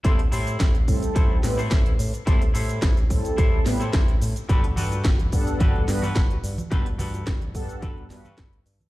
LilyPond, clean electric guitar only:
\new Staff \with { instrumentName = "Clean electric guitar" } { \time 4/4 \key a \dorian \tempo 4 = 108 <e' g' a' c''>16 r16 <e' g' a' c''>8. r8. <e' g' a' c''>8 r16 <e' g' a' c''>8. r8 | <e' g' a' c''>16 r16 <e' g' a' c''>8. r8. <e' g' a' c''>8 r16 <e' g' a' c''>8. r8 | <fis' g' a' b'>16 r16 <fis' g' a' b'>8. r8. <fis' g' a' b'>8 r16 <fis' g' a' b'>8. r8 | <fis' g' a' b'>16 r16 <fis' g' a' b'>8. r8. <fis' g' a' b'>8 r16 <fis' g' a' b'>8. r8 | }